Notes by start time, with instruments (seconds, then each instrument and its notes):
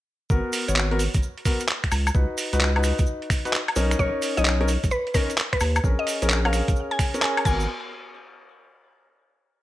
0.30 sub bass G#1, grand piano B3 F#4 A#4, kick, cabasa
0.53 open hi-hat, cabasa
0.68 sub bass G#1, grand piano B3 F#4 C#5, closed hi-hat, cabasa
0.76 clap, cabasa
0.91 grand piano B3 F#4 A#4, closed hi-hat
0.99 open hi-hat, cabasa
1.14 sub bass G#1, kick, closed hi-hat, cabasa
1.23 cabasa
1.38 closed hi-hat
1.45 grand piano B3 F#4 A#4, kick, open hi-hat, cabasa
1.60 closed hi-hat, cabasa
1.68 clap, cabasa
1.84 finger snap, kick, closed hi-hat
1.92 sub bass C#2, open hi-hat, cabasa, high woodblock
2.07 closed hi-hat, cabasa, high woodblock
2.15 sub bass C#2, grand piano D#4 F#4 B4, kick, cabasa
2.38 open hi-hat, cabasa
2.53 sub bass C#2, grand piano D#4 F#4 B4, closed hi-hat, cabasa
2.60 clap, cabasa
2.76 grand piano D#4 F#4 B4, closed hi-hat, high woodblock
2.83 finger snap, open hi-hat, cabasa
2.99 sub bass C#2, kick, closed hi-hat, cabasa
3.06 cabasa
3.22 closed hi-hat
3.30 finger snap, kick, open hi-hat, cabasa
3.45 grand piano D#4 F#4 B4, closed hi-hat, cabasa
3.53 clap, cabasa
3.68 closed hi-hat, high woodblock
3.76 sub bass B1, grand piano C#4 D#4 A#4, open hi-hat, cabasa
3.91 finger snap, closed hi-hat, cabasa
3.99 sub bass B1, grand piano C#4 D#4 A#4, synth pluck C#5, kick, cabasa
4.22 open hi-hat, cabasa
4.37 sub bass B1, grand piano C#4 D#4 C#5, synth pluck D#5, closed hi-hat, cabasa
4.45 clap, cabasa
4.61 grand piano C#4 D#4 A#4, closed hi-hat
4.68 open hi-hat, cabasa
4.84 sub bass B1, kick, closed hi-hat, cabasa
4.91 synth pluck B4, cabasa
5.07 closed hi-hat
5.14 grand piano C#4 D#4 A#4, synth pluck A#4, kick, open hi-hat, cabasa
5.30 closed hi-hat, cabasa
5.38 clap, cabasa
5.53 synth pluck B4, finger snap, kick, closed hi-hat
5.60 sub bass D#2, open hi-hat, cabasa, high woodblock
5.76 closed hi-hat, cabasa, high woodblock
5.84 sub bass A#1, grand piano C#4 G#4 A#4, kick, cabasa
5.99 synth pluck D#5
6.07 open hi-hat, cabasa
6.22 sub bass A#1, grand piano C#4 G#4 A#4, closed hi-hat, cabasa
6.30 clap, cabasa
6.45 grand piano C#4 G#4 A#4, synth pluck F5, closed hi-hat, high woodblock
6.53 finger snap, open hi-hat, cabasa
6.68 sub bass A#1, kick, closed hi-hat, cabasa
6.76 cabasa
6.91 synth pluck G#5, closed hi-hat
6.99 finger snap, kick, open hi-hat, cabasa
7.14 grand piano C#4 G#4 A#4, closed hi-hat, cabasa
7.22 synth pluck G#5, clap, cabasa
7.37 closed hi-hat, high woodblock
7.45 sub bass G#1, grand piano B3 F#4 A#4, synth pluck G#5, kick, crash, cabasa
7.60 cabasa